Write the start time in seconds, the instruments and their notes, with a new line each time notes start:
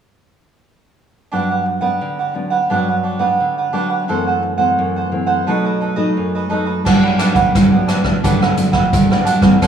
1.32 nylon-string guitar G2 F#3 B3 D4, cavaquinho D4 G4 B4 F#5
1.50 cavaquinho G4 B4 F#5
1.66 muted cavaquinho stroke
1.81 nylon-string guitar B3 D4, cavaquinho G4 B4 F#5
2.01 nylon-string guitar D3
2.19 cavaquinho G4 B4 F#5
2.34 nylon-string guitar F#3 B3 D4, muted cavaquinho stroke
2.50 cavaquinho G4 B4 F#5
2.70 nylon-string guitar G2 F#3 B3 D4, cavaquinho D4 G4 B4 F#5
2.89 cavaquinho G4 B4 F#5
3.03 cavaquinho D4 G4 B4 F#5
3.19 nylon-string guitar B3 D4, cavaquinho G4 B4 F#5
3.40 nylon-string guitar D3
3.58 cavaquinho G4 B4 F#5
3.73 nylon-string guitar F#3 B3 D4, cavaquinho D4 G4 B4 F#5
3.88 cavaquinho G4 B4 F#5
4.08 nylon-string guitar F#2 E3 A3 C4, cavaquinho E4 A4 C5 F#5
4.27 cavaquinho A4 C5 F#5
4.42 muted cavaquinho stroke
4.58 nylon-string guitar E3 A3 C4, cavaquinho A4 C5 F#5
4.79 nylon-string guitar F#2
4.96 cavaquinho A4 C5 F#5
5.12 nylon-string guitar E3 A3 C4, muted cavaquinho stroke
5.27 cavaquinho A4 C5 F#5
5.47 nylon-string guitar B2 F#3 A3 D#4, cavaquinho D#4 A4 B4 D#5
5.65 cavaquinho A4 B4 D#5
5.81 cavaquinho D#4 A4 B4 D#5
5.96 nylon-string guitar F#3 A3 D#4, cavaquinho A4 B4 D#5
6.17 nylon-string guitar F#2
6.35 cavaquinho A4 B4 D#5
6.49 nylon-string guitar F#3 A3 D#4, cavaquinho D#4 A4 B4 D#5
6.65 cavaquinho A4 B4 D#5
6.85 nylon-string guitar G2 F#3 B3 D4, cavaquinho D4 G4 B4 F#5, kick, cross-stick, crash
7.03 cavaquinho G4 B4 F#5
7.18 nylon-string guitar F#3 B3 D4, cavaquinho D4 G4 B4 F#5, cross-stick, closed hi-hat
7.34 cavaquinho G4 B4 F#5, kick, closed hi-hat
7.55 nylon-string guitar G2 D3, kick, cross-stick, closed hi-hat
7.72 nylon-string guitar F#3 B3 D4, cavaquinho G4 B4 F#5
7.87 cavaquinho D4 G4 B4 F#5, cross-stick, closed hi-hat
8.03 nylon-string guitar F#3 B3 D4, muted cavaquinho stroke, kick, cross-stick
8.23 nylon-string guitar G2 D3 F#3 B3 D4, cavaquinho D4 G4 B4 F#5, kick, closed hi-hat
8.41 cavaquinho G4 B4 F#5, cross-stick
8.56 nylon-string guitar F#3 B3 D4, muted cavaquinho stroke, closed hi-hat
8.72 cavaquinho G4 B4 F#5, kick, cross-stick
8.93 nylon-string guitar G2 D3, kick, closed hi-hat
9.10 nylon-string guitar F#3 B3 D4, cavaquinho G4 B4 F#5, cross-stick
9.25 cavaquinho D4 G4 B4 F#5, closed hi-hat
9.39 nylon-string guitar G2 E3 A3, cavaquinho G4 B4 F#5, kick, cross-stick, closed hi-hat
9.43 nylon-string guitar C4
9.61 nylon-string guitar F#2, cavaquinho E4 A4 C5 F#5, kick, cross-stick, closed hi-hat